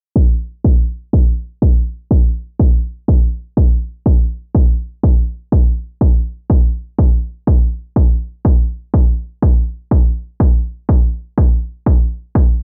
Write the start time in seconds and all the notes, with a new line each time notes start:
0.16 kick
0.64 kick
1.13 kick
1.62 kick
2.11 kick
2.60 kick
3.08 kick
3.57 kick
4.06 kick
4.55 kick
5.03 kick
5.52 kick
6.01 kick
6.50 kick
6.99 kick
7.47 kick
7.96 kick
8.45 kick
8.94 kick
9.42 kick
9.91 kick
10.40 kick
10.89 kick
11.38 kick
11.86 kick
12.35 kick